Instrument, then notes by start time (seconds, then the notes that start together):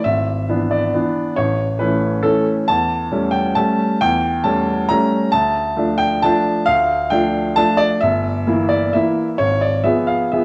grand piano
0.04 G#1 E5
0.49 E3 B3 D4
0.71 D5
0.94 E3 B3 D4
1.36 A1 C#5
1.79 E3 A3 C#4 B4
2.23 E3 A3 C#4 A4
2.68 E2 A5
3.12 G3 A3 C#4
3.31 G5
3.55 G3 A3 C#4 A5
4.01 E2 G5
4.44 G3 A3 C#4 A5
4.89 G3 A3 C#4 A#5
5.32 D2 A5
5.76 F3 A3 D4
5.98 G5
6.22 F3 A3 D4 A5
6.66 D2 F5
7.10 F3 A3 D4 G5
7.56 F3 A3 D4 A5
7.77 D5
8.01 G1 E5
8.47 E3 A#3 E4
8.69 D5
8.93 E3 A#3 E4 E5
9.38 G#1 C#5
9.61 D5
9.84 F3 B3 G#4 E5
10.07 F5
10.32 F3 B3 G#4 E5